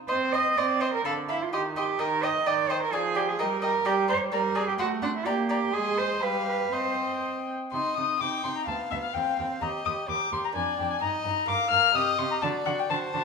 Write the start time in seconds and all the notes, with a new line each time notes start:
0.08 C4 C5 D#5 C6
0.33 D#5 C6
0.57 C4 D5 D#5 C6
0.80 C5 D#5 C6
0.93 A#4
1.05 D3 A4 F5 B5
1.28 E4 F5 B5
1.42 F4
1.53 D#3 G4 D#5 C6
1.76 G4 D#5 C6
1.99 D#3 A#4 D#5 G5
2.23 D#5 G5
2.46 D#3 D5 D#5 G5
2.70 C5 D#5 G5
2.82 A#4
2.93 F3 G#4 D5 G#5
3.15 G4 D5 G#5
3.29 G#4
3.39 G3 A#4 D#5 G5
3.62 A#4 D#5 G5
3.85 G3 G4 D5 A#5
4.08 C5 D5 A#5
4.32 G3 A#4 D5 A#5
4.55 G#4 D5 A#5
4.68 G4
4.79 A3 F#4 F#5 C6
5.02 D4 F#5 C6
5.15 E4
5.26 A#3 G4 D5 A#5
5.49 G4 D5 A#5
5.73 G#3 G#4 D#5 C6
5.98 C5
6.22 G3 B4 F5 G5
6.47 B4
6.72 C4 C5 D#5 G5
7.72 C3 D#4 D#5 C6
7.97 C3 D#4 D#6
8.20 C3 D#4 G5 D6
8.44 C3 D#4 C6
8.56 A#5
8.68 D2 B3 F5 A5
8.91 D2 B3 E5
9.03 F5
9.14 D#2 C4 G5
9.38 D#2 C4 G5
9.61 D#2 G4 D#5 A#5
9.85 D#2 G4 D#6
10.09 D#2 G4 A#4 D6
10.32 D#2 G4 C6
10.45 A#5
10.55 F2 D4 D5 G#5
10.78 F2 D4 G5
10.91 G#5
11.02 G2 D#4 D#5 A#5
11.25 G2 D#4 A#5
11.48 G2 A#4 F5 D6
11.71 G2 A#4 F6
11.94 C3 G4 D#5 D#6
12.19 C3 G4 C6
12.31 A#5
12.42 D3 F#4 D5 A5
12.66 D3 F#4 F#5
12.79 G5
12.90 D3 F#4 C5 A5
13.13 D3 F#4 A5